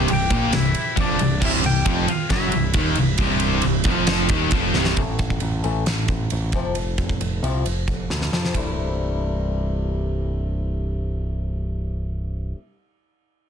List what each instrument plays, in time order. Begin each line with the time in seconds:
Already playing: clean electric guitar G5
0.08 picked electric bass C1, distorted electric guitar C2, clean electric guitar G4, ride
0.13 clean electric guitar G5
0.30 picked electric bass A#1, distorted electric guitar A#2 A#3, kick, ride
0.52 picked electric bass C1, distorted electric guitar C2, clean electric guitar E4, snare, ride
0.57 clean electric guitar E5
0.74 ride
0.96 picked electric bass F1, distorted electric guitar F2 F3, clean electric guitar D4, kick, ride
1.01 clean electric guitar D5
1.18 picked electric bass C1, distorted electric guitar C2, ride
1.42 picked electric bass C1, distorted electric guitar C2 C3, clean electric guitar E4 E5, kick, crash
1.63 picked electric bass C1, distorted electric guitar C2, clean electric guitar G4 G5, ride
1.85 picked electric bass F1, distorted electric guitar F2 F3, kick, ride
2.07 clean electric guitar F4 F5, muted distorted electric guitar stroke, muted overdriven electric guitar stroke, muted picked electric bass stroke, ride
2.29 picked electric bass F#1, distorted electric guitar F#2 F#3, clean electric guitar E4 E5, kick, snare, ride
2.52 picked electric bass C1, distorted electric guitar C2, ride
2.73 picked electric bass D#1, distorted electric guitar D#2 D#3, kick, ride
2.95 picked electric bass C1, distorted electric guitar C2, ride
3.18 picked electric bass C1, distorted electric guitar C2 C3, kick, ride
3.40 ride
3.62 picked electric bass C1, distorted electric guitar C2, ride
3.84 picked electric bass F1, distorted electric guitar F2 F3, kick, ride
4.07 snare, ride
4.29 picked electric bass D#1, distorted electric guitar D#2 D#3, kick, ride
4.51 picked electric bass F1, distorted electric guitar F2 F3, kick, ride
4.74 picked electric bass C1, distorted electric guitar C2 C3, snare
4.85 snare
4.97 picked electric bass A1, steel-string acoustic guitar A2 E3 A3, kick, ride
5.19 steel-string acoustic guitar A2 E3, kick, ride
5.30 kick
5.40 picked electric bass A1, steel-string acoustic guitar A2 E3, ride
5.63 picked electric bass A1, steel-string acoustic guitar A2 E3 A3, ride
5.86 steel-string acoustic guitar A2 E3, snare, ride
6.08 steel-string acoustic guitar A2 E3, kick, ride
6.30 picked electric bass A1, steel-string acoustic guitar A2 E3, ride
6.52 picked electric bass F1, steel-string acoustic guitar F2 C3 F3, kick, ride
6.75 picked electric bass F1, steel-string acoustic guitar F2 C3, ride
6.98 picked electric bass F1, steel-string acoustic guitar F2 C3, kick, ride
7.09 kick
7.20 picked electric bass F1, steel-string acoustic guitar F2 C3, ride
7.42 picked electric bass C2, steel-string acoustic guitar F2 C3 F3, ride
7.65 picked electric bass F1, steel-string acoustic guitar F2 C3, ride
7.87 picked electric bass F1, steel-string acoustic guitar F2 C3, kick, ride
8.10 picked electric bass D2, steel-string acoustic guitar F2 C3, snare
8.21 snare
8.32 picked electric bass F2, steel-string acoustic guitar F2 C3 F3, snare
8.45 snare
8.53 picked electric bass C1, steel-string acoustic guitar C2 G2 C3 G3 A3, kick, ride
8.57 steel-string acoustic guitar E4